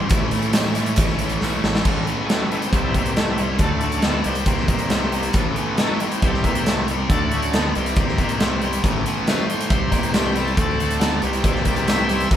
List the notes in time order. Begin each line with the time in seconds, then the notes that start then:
Already playing: E3 G3 C4 E4
0.10 A1 A2 E3 A3 C#4 E4 A4 C#5, kick, closed hi-hat, tambourine
0.14 E4
0.31 A2 A3, closed hi-hat, tambourine
0.43 closed hi-hat
0.53 E3, snare, closed hi-hat, tambourine
0.75 E3 A3 C#4 E4, closed hi-hat, tambourine
0.79 A2
0.86 closed hi-hat
0.96 A1 C#4, kick, closed hi-hat, tambourine
1.08 snare
1.19 E3, closed hi-hat, tambourine
1.29 closed hi-hat
1.41 B1 A3, snare, tambourine
1.63 A1 E3, snare
1.75 snare
1.84 A1 A2 C#3 E3 A3 B3, kick, crash
2.07 A2 E3, closed hi-hat
2.25 F#3 G#4
2.29 A2 A4, snare, closed hi-hat
2.46 E4
2.50 A2 E3, closed hi-hat
2.62 C4, closed hi-hat
2.72 C2 C3 E3 G3 C4 G#4, kick, closed hi-hat
2.77 A4
2.89 E4
2.94 C2 C3 A#3, kick, closed hi-hat
3.06 C4, closed hi-hat
3.16 C3 A3 A4, snare, closed hi-hat
3.33 E4
3.38 C3 G3, closed hi-hat
3.50 C#4
3.59 D2 D3 F#3 A3, kick, closed hi-hat
3.63 D4 A4
3.77 E4
3.81 D3 A3, closed hi-hat
3.91 C#4, closed hi-hat
4.02 D3 E3 B3 C4, snare, closed hi-hat
4.24 C2 C3 E3 G3, closed hi-hat
4.28 C4
4.35 closed hi-hat
4.46 C3 A#3, kick, closed hi-hat
4.58 snare
4.68 C2 C3 A#3, kick, closed hi-hat
4.79 closed hi-hat
4.90 C3 A3, snare, closed hi-hat
5.12 C3 G3, closed hi-hat
5.23 closed hi-hat
5.33 A1 A2 C#3 E3 A3 B3, kick, closed hi-hat
5.56 A2 E3, closed hi-hat
5.77 A2 F#3 G#4 A4, snare, closed hi-hat
5.95 E4
6.00 A2 E3, closed hi-hat
6.12 C4, closed hi-hat
6.22 C2 C3 E3 G3 C4 G#4, kick, closed hi-hat
6.28 A4
6.34 snare
6.42 C2 C3 E4, kick, closed hi-hat
6.46 A#3
6.52 C4, closed hi-hat
6.66 C3 A3 A4, snare, closed hi-hat
6.83 E4
6.88 C3 G3, closed hi-hat
6.98 C4
7.08 D2 D3 F#3 A3 D4 A4, kick, closed hi-hat
7.29 E4, closed hi-hat
7.34 D3 A3
7.41 C#4, closed hi-hat
7.53 D3 B3 C4, snare, closed hi-hat
7.75 C2 C3 E3 G3 C4, closed hi-hat
7.86 closed hi-hat
7.96 C3 A#3, kick, closed hi-hat
8.08 snare
8.18 C2 C3 A#3, kick, closed hi-hat
8.29 closed hi-hat
8.40 C3 A3, snare, closed hi-hat
8.62 C3 G3, closed hi-hat
8.73 closed hi-hat
8.82 A1 A2 C#3 E3 A3 B3, kick, closed hi-hat
8.96 tambourine
9.06 A2 E3, closed hi-hat, tambourine
9.27 A2 F#3 C5, snare, closed hi-hat, tambourine
9.48 A2 E3 C5, closed hi-hat
9.61 closed hi-hat
9.69 C2 C3 E3 G3 C4, kick, closed hi-hat
9.91 C2 C3 A#3, kick, closed hi-hat, tambourine
10.03 closed hi-hat
10.14 C3 A3 G4, snare, closed hi-hat, tambourine
10.35 C3 G3, closed hi-hat, tambourine
10.40 C4 A4
10.48 tambourine
10.57 D2 D3 F#3 A3, kick, closed hi-hat
10.61 A3 D4
10.70 tambourine
10.79 D3 A3, closed hi-hat, tambourine
10.91 closed hi-hat
11.00 D3 B3, snare, closed hi-hat, tambourine
11.22 C2 C3 E3 G3 C4, closed hi-hat
11.33 closed hi-hat
11.44 C3 A#3 A4, kick, closed hi-hat
11.55 snare
11.65 C2 C3 A#3 D5, kick, closed hi-hat, tambourine
11.76 closed hi-hat
11.87 C3 A3 E5, snare, closed hi-hat, tambourine
12.09 C3 G3, closed hi-hat, tambourine
12.20 closed hi-hat, tambourine
12.30 A1 A2 E3 D#5, kick, closed hi-hat